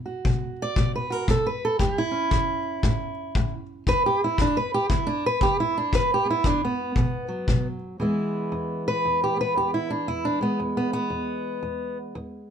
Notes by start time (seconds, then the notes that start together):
Already playing: B2
0.06 F#4
0.25 B2, kick
0.62 D5
0.76 B2, kick
0.95 B4
1.10 F#4 A#4
1.28 B2 A4, kick
1.47 B4
1.65 A4
1.79 A2 G4, kick
1.98 E4
2.11 C#4
2.31 A2, kick
2.83 A2, kick
3.35 A2, kick
3.87 E2 B4, kick
4.06 G4
4.24 E4
4.38 E2 D4, kick
4.57 B4
4.74 G4
4.90 E2 E4, kick
5.07 D4
5.26 B4
5.41 E2 G4, kick
5.60 E4
5.78 D4
5.93 E2 B4, kick
6.14 G4
6.25 B3
6.30 E4
6.44 E2 D4, kick
6.65 B3
6.96 B2, kick
7.28 F#3
7.48 B2, kick
8.00 E2 E3 G#3 B3 E4
8.52 E2
8.88 B4
9.05 E2
9.24 G4
9.37 B3
9.41 B4
9.56 E2 G4
9.74 E4
9.90 D4
10.08 E2 E4
10.25 D4
10.41 G#3 B3
10.60 E2
10.77 B3
10.93 B3
11.10 E2
11.63 E2
12.15 E2